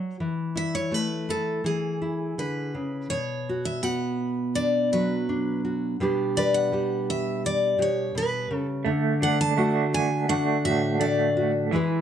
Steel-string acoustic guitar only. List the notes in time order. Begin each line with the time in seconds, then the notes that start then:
0.57 E5
0.75 C#5
0.94 B4
1.30 A4
1.66 G#4
2.39 B4
3.10 C#5
3.65 E5
3.83 F#5
4.55 D5
4.93 B4
6.37 D5
6.54 F#5
7.10 E5
7.46 D5
7.82 C#5
8.18 B4
9.23 F#5
9.41 A5
9.94 G#5
10.29 F#5
10.65 E5
11.01 D5